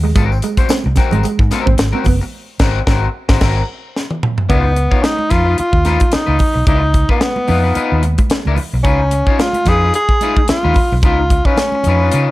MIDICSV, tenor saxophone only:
0, 0, Header, 1, 2, 480
1, 0, Start_track
1, 0, Tempo, 543478
1, 141, Time_signature, 4, 2, 24, 8
1, 10873, End_track
2, 0, Start_track
2, 0, Title_t, "Tenor saxophone"
2, 0, Program_c, 0, 66
2, 3969, Note_on_c, 0, 59, 96
2, 4440, Note_on_c, 0, 63, 106
2, 4453, Note_off_c, 0, 59, 0
2, 4686, Note_on_c, 0, 65, 113
2, 4699, Note_off_c, 0, 63, 0
2, 4931, Note_off_c, 0, 65, 0
2, 4941, Note_on_c, 0, 65, 96
2, 5419, Note_on_c, 0, 63, 99
2, 5432, Note_off_c, 0, 65, 0
2, 5895, Note_off_c, 0, 63, 0
2, 5900, Note_on_c, 0, 63, 98
2, 6247, Note_off_c, 0, 63, 0
2, 6281, Note_on_c, 0, 59, 93
2, 7202, Note_off_c, 0, 59, 0
2, 7804, Note_on_c, 0, 61, 92
2, 8304, Note_on_c, 0, 65, 98
2, 8317, Note_off_c, 0, 61, 0
2, 8556, Note_on_c, 0, 68, 109
2, 8569, Note_off_c, 0, 65, 0
2, 8786, Note_off_c, 0, 68, 0
2, 8792, Note_on_c, 0, 68, 110
2, 9234, Note_off_c, 0, 68, 0
2, 9269, Note_on_c, 0, 65, 96
2, 9713, Note_off_c, 0, 65, 0
2, 9764, Note_on_c, 0, 65, 88
2, 10119, Note_on_c, 0, 61, 95
2, 10132, Note_off_c, 0, 65, 0
2, 10873, Note_off_c, 0, 61, 0
2, 10873, End_track
0, 0, End_of_file